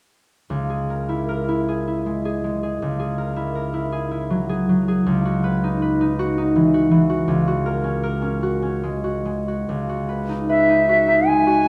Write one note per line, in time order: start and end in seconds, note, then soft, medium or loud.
0.50 2.81 C#2 soft
0.70 1.67 G#4 soft
0.90 1.27 A#4 soft
1.09 1.47 E4 soft
1.29 3.17 A#4 soft
1.48 1.86 E4 soft
1.69 2.24 G#4 soft
1.88 3.35 E4 soft
2.06 2.43 G#3 soft
2.25 2.62 G#4 soft
2.44 6.34 G#3 soft
2.63 2.98 G#4 soft
2.82 5.05 C#2 soft
3.00 3.91 G#4 soft
3.18 3.54 A#4 soft
3.36 3.72 E4 soft
3.55 5.09 A#4 soft
3.74 4.10 E4 soft
3.92 4.48 G#4 soft
4.11 7.30 E4 soft
4.30 4.68 F#3 soft
4.49 4.87 G#4 soft
4.69 8.59 F#3 soft
4.88 8.78 G#4 soft
5.06 7.26 C#2 soft
5.25 6.18 F#4 soft
5.44 5.81 B4 soft
5.64 6.00 D#4 soft
5.82 7.31 B4 soft
6.01 6.37 D#4 soft
6.19 6.73 F#4 soft
6.38 7.31 D#4 soft
6.56 6.90 E3 soft
6.74 7.08 F#4 soft
6.91 7.30 E3 soft
7.10 7.46 F#4 soft
7.28 9.68 C#2 soft
7.47 8.42 F#4 soft
7.66 8.02 A#4 soft
7.84 8.21 C#4 soft
8.03 9.73 A#4 soft
8.22 8.61 C#4 soft
8.43 9.03 F#4 soft
8.62 11.68 C#4 soft
8.84 9.24 G#3 soft
9.04 9.47 F#4 soft
9.25 11.26 G#3 soft
9.48 9.88 F#4 soft
9.69 11.68 C#2 soft
9.89 10.88 F#4 soft
10.09 10.48 B4 soft
10.29 10.68 D#4 soft
10.49 11.68 B4 soft
10.49 11.29 E5 soft
10.69 11.06 D#4 soft
10.89 11.46 F#4 soft
11.07 11.68 D#4 soft
11.27 11.66 G#3 soft
11.27 11.68 G#5 medium
11.47 11.68 F#4 soft